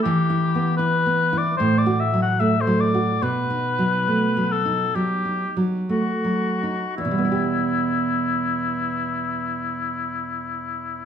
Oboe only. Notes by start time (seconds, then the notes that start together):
0.03 G4
0.77 B4
1.38 D5
1.57 C5
1.78 D5
2.00 E5
2.22 F#5
2.40 E5
2.61 C5
2.80 D5
3.23 B4
4.52 A4
4.95 G4
5.89 F#4
6.97 E4